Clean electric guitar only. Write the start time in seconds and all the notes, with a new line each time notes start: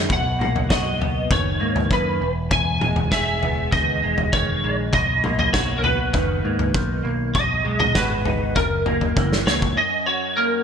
Already playing: D#4
0.09 B2
0.39 A#3
0.69 F#4
1.00 B3
1.31 D#3
1.60 A#3
1.91 D#3
2.20 E2
2.51 E2
2.81 G#3
3.12 G#4
3.43 B3
3.73 D#3
4.03 G#3
4.33 D#3
4.64 G#3
4.94 B2
5.23 A#3
5.53 F#4
5.85 B3
6.14 D#3
6.44 A#3
6.74 D#3
7.03 A#3
7.35 B2
7.64 G#3
7.96 F#4
8.25 D#4
8.56 F#2
8.87 A#3
9.16 E3
9.46 A#3
9.77 F#2
10.07 F#4
10.37 A#3